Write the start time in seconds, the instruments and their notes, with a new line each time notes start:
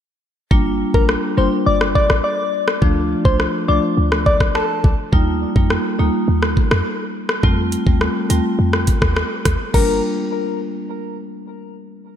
0.51 808-style bass G1, marimba G3 A#3 D4 F4, kick
0.94 808-style bass A#1, marimba G3 A#3 D4 F4, soft synth lead A#4, kick
1.09 cross-stick
1.37 808-style bass G1, marimba G3 A#3 D4 F4, soft synth lead C5
1.66 808-style bass G1, soft synth lead D5
1.81 cross-stick
1.95 soft synth lead D5, kick
2.10 808-style bass A1, cross-stick
2.24 soft synth lead D5
2.68 cross-stick
2.82 808-style bass D2, marimba F3 A3 D4 F4, kick
3.25 808-style bass C2, marimba F3 A3 D4 F4, soft synth lead C5, kick
3.40 cross-stick
3.68 808-style bass C2, marimba F3 A3 D4 F4, soft synth lead D5
3.97 808-style bass D2
4.12 cross-stick
4.26 soft synth lead D5, kick
4.40 808-style bass C2, kick, cross-stick
4.55 soft synth lead A4, cross-stick
4.84 808-style bass C2, kick
5.12 808-style bass D#2, marimba G3 A#3 D#4 F4, kick
5.56 808-style bass F2, marimba G3 A#3 D#4 F4, kick
5.70 cross-stick
5.99 808-style bass D2, marimba G3 A#3 D#4 F4
6.28 808-style bass D#2
6.43 cross-stick
6.57 kick
6.71 808-style bass F2, cross-stick
7.29 cross-stick
7.43 808-style bass F2, marimba G3 A3 C4 F4, kick
7.72 closed hi-hat
7.86 808-style bass D#2, marimba G3 A3 C4 F4, kick
8.01 cross-stick
8.30 808-style bass D#2, marimba G3 A3 C4 F4, closed hi-hat
8.59 808-style bass F2
8.73 cross-stick
8.87 kick, closed hi-hat
9.02 808-style bass D#2, kick, cross-stick
9.16 cross-stick
9.45 808-style bass D#2, kick, cross-stick, closed hi-hat
9.74 808-style bass G1, marimba G3 A#3 D4 F4, soft synth lead A#4, kick, crash